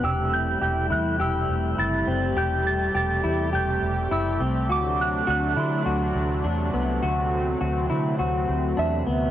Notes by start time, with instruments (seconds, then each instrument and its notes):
Already playing: analog synth pad C3
0.04 fingered electric bass E1, analog synth pad G3 A3 E4, clean electric guitar G4, synth bell E6
0.33 synth bell G6
0.61 fingered electric bass E1, clean electric guitar G4, synth bell G6
0.90 fingered electric bass E2, clean electric guitar E4, synth bell F#6
1.20 fingered electric bass E1, clean electric guitar G4, synth bell E6
1.49 fingered electric bass E1
1.78 fingered electric bass F#1, clean electric guitar E4, synth bell A6
2.07 fingered electric bass F#1, clean electric guitar C4
2.36 fingered electric bass E1, clean electric guitar G4, analog synth pad G4, synth bell G6
2.67 synth bell A6
2.95 fingered electric bass E1, clean electric guitar G4, synth bell A6
3.24 fingered electric bass E2, clean electric guitar E4
3.53 fingered electric bass E1, clean electric guitar G4, synth bell G6
3.83 fingered electric bass E1
4.11 fingered electric bass F#1, clean electric guitar E4, synth bell E6
4.40 fingered electric bass C2, clean electric guitar C4
4.69 fingered electric bass D2, analog synth pad F#3 D4, clean electric guitar F#4, synth bell D6
5.01 synth bell F#6
5.27 fingered electric bass D2, clean electric guitar F#4, synth bell F#6
5.56 fingered electric bass D3, clean electric guitar E4, synth bell C6
5.86 fingered electric bass D2, clean electric guitar F#4
6.15 fingered electric bass D2
6.44 fingered electric bass E2, clean electric guitar D4
6.74 fingered electric bass C2, clean electric guitar B3
7.02 fingered electric bass D2, analog synth pad C4, clean electric guitar F#4
7.61 fingered electric bass D2, clean electric guitar F#4
7.90 fingered electric bass D3, clean electric guitar E4
8.19 fingered electric bass D2, clean electric guitar F#4
8.49 fingered electric bass D2
8.77 fingered electric bass E2, clean electric guitar D4, synth bell E5
9.07 fingered electric bass D2, clean electric guitar B3